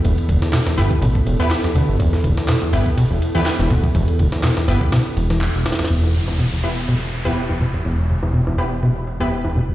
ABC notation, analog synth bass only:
X:1
M:4/4
L:1/16
Q:"Swing 16ths" 1/4=123
K:Em
V:1 name="Analog synth bass" clef=bass
E,,, z E,,, z3 G,,, z A,,, z E,,, E,, z2 D,, G,,, | E,,, z E,,, z3 G,,, z E,,, E,,, z E,, z E,,, D,,, z | E,,, z E,,, z3 G,,, z3 E,,,3 z3 | E,,,16 |
E,,,16 |]